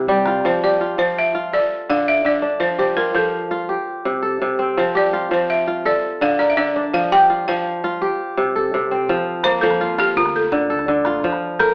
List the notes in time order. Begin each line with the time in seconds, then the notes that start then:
Already playing: C2 C3 E4 A#4
0.07 G3 G4, calabash thump
0.17 calabash click
0.26 F4, calabash click
0.45 F3 C5
0.63 G4 D5
0.81 F4
0.98 F3 C5
1.19 E5
1.35 F4
1.53 A4 D5
1.89 D3 F5
2.08 E5
2.25 D3 D5
2.42 D4
2.60 F3 C5
2.79 G4 C5
2.97 F4 A#4
3.14 F3 A4
3.51 F4
3.69 G4
4.05 C3
4.22 A4
4.42 C3
4.59 C4
4.77 F3 C5
4.95 G4 D5
5.13 F4
5.31 F3 C5
5.50 E5
5.67 F4
5.85 A4 D5
6.21 D3 F5
6.39 A#4 D5
6.50 E5
6.57 D3 D5
6.76 D4
6.93 F3 F5
7.12 G4 G5
7.30 F4
7.48 F3 F5
7.84 F4
8.02 G4
8.37 C3
8.56 A4
8.74 C3
8.91 C4
9.08 F2 F3, calabash thump
9.17 calabash click
9.44 F2 A#3 C5, calabash thump, calabash click
9.61 F3 A4, calabash click
9.71 calabash click
9.81 F4, calabash thump
9.90 calabash click
9.98 F3 F4 G4, calabash click
10.16 D2 F4 A#4, calabash thump
10.26 calabash click
10.36 A4
10.52 A1 D3, calabash thump, calabash click
10.61 calabash click
10.70 D2 A4
10.79 calabash click
10.87 D3, calabash thump
11.05 A1 F4, calabash click
11.14 calabash click
11.23 F2 F3, calabash thump
11.32 calabash click
11.59 F2 A4 A#4, calabash thump, calabash click